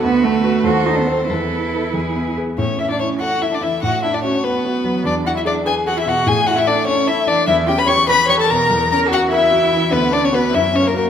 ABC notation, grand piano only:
X:1
M:6/8
L:1/8
Q:3/8=98
K:A
V:1 name="Grand piano"
D,, A, [FB] ^D,, A, [A^B] | E,, B, [AB] E,, B, [GB] | A,, C E A E E, | A,, D F B F F, |
E,, E G B G B,, | A,, E A c A E, | [K:F#phr] E,, C G B G B,, | E,, C F ^A F E, |
D,, D [FB] F,, C [F^A] |]